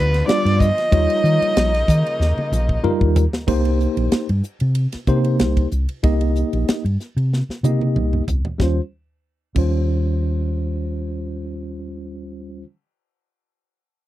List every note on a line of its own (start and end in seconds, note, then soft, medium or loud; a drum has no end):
0.00 0.21 D2 medium
0.00 0.89 D3 medium
0.00 3.43 F3 medium
0.00 3.44 G3 medium
0.00 0.89 B3 medium
0.00 0.89 F4 medium
0.00 0.27 B4 loud
0.14 snare soft
0.14 ride medium
0.27 0.67 G3 medium
0.27 0.67 D4 medium
0.27 0.68 F4 medium
0.27 0.60 D5 medium
0.27 0.68 D5 medium
0.27 snare loud
0.27 ride medium
0.45 0.70 G2 medium
0.45 snare soft
0.45 ride medium
0.59 2.83 D#5 loud
0.59 kick medium
0.59 hi-hat pedal medium
0.78 snare soft
0.78 ride medium
0.91 1.06 D#2 medium
0.91 3.46 C#3 medium
0.91 1.71 G3 medium
0.91 3.46 A#3 medium
0.91 1.71 D#4 medium
0.91 3.45 D#4 medium
0.91 1.71 F4 medium
0.91 1.71 C#5 medium
0.91 kick loud
0.91 ride medium
1.10 ride medium
1.24 1.37 D#3 medium
1.24 hi-hat pedal medium
1.41 muted fingered electric bass stroke soft
1.41 ride medium
1.56 1.81 A#1 medium
1.56 snare loud
1.56 ride medium
1.74 snare soft
1.74 ride medium
1.88 2.01 D#3 medium
1.88 kick medium
1.88 hi-hat pedal medium
2.07 ride medium
2.20 2.33 D#2 medium
2.20 snare medium
2.37 muted fingered electric bass stroke soft
2.37 high tom medium
2.52 2.76 A#1 medium
2.52 hi-hat pedal medium
2.52 mid tom medium
2.69 kick medium
2.83 3.23 G3 medium
2.83 3.23 D#4 medium
2.83 3.23 F4 medium
2.83 3.23 A#4 medium
2.83 muted fingered electric bass stroke soft
2.83 mid tom medium
3.01 3.26 D#2 medium
3.01 kick medium
3.16 floor tom loud
3.16 hi-hat pedal medium
3.33 snare medium
3.47 3.85 C2 medium
3.47 4.26 A#3 medium
3.47 4.26 D#4 medium
3.47 4.27 G4 medium
3.47 4.27 C5 medium
3.47 kick loud
3.47 crash medium
3.65 ride medium
3.80 hi-hat pedal medium
3.97 4.08 A#1 medium
3.97 ride medium
4.12 snare medium
4.12 ride medium
4.29 4.41 G2 medium
4.29 ride medium
4.44 hi-hat pedal medium
4.60 4.86 C3 medium
4.60 ride medium
4.75 ride medium
4.92 muted fingered electric bass stroke soft
4.92 snare soft
4.92 ride medium
5.07 5.41 C3 medium
5.07 5.67 A#3 medium
5.07 5.67 D#4 medium
5.07 5.67 G4 medium
5.07 5.67 C5 medium
5.07 kick medium
5.07 hi-hat pedal medium
5.24 ride medium
5.39 5.64 C2 medium
5.39 snare medium
5.39 ride medium
5.57 kick medium
5.57 ride medium
5.72 5.85 C2 medium
5.72 hi-hat pedal medium
5.89 ride medium
6.03 6.42 C2 loud
6.03 6.83 A#3 medium
6.03 6.82 D#4 medium
6.03 6.83 G4 medium
6.03 6.83 D#5 medium
6.03 kick medium
6.03 ride medium
6.21 ride medium
6.36 hi-hat pedal medium
6.53 6.64 A#1 medium
6.53 ride medium
6.68 snare medium
6.68 ride medium
6.85 6.96 G2 medium
6.85 ride medium
7.00 snare soft
7.00 hi-hat pedal medium
7.16 7.41 C3 medium
7.16 ride soft
7.33 snare soft
7.49 muted fingered electric bass stroke soft
7.49 snare soft
7.63 7.97 C3 medium
7.63 8.23 A#3 medium
7.63 8.23 D#4 medium
7.63 8.23 G4 medium
7.63 8.23 D#5 medium
7.63 hi-hat pedal medium
7.63 high tom medium
7.81 high tom soft
7.96 8.20 C2 medium
7.96 mid tom medium
8.13 mid tom medium
8.27 8.41 C2 medium
8.27 floor tom medium
8.27 hi-hat pedal medium
8.45 floor tom medium
8.58 8.79 D#2 medium
8.58 8.78 G3 medium
8.58 8.78 C#4 medium
8.58 8.79 F4 medium
8.58 8.80 C5 medium
8.58 kick medium
8.58 snare medium
9.55 12.62 D#2 medium
9.55 12.62 G3 medium
9.55 12.62 C#4 medium
9.55 12.63 F4 medium
9.55 12.64 C5 medium
9.55 kick medium
9.55 crash medium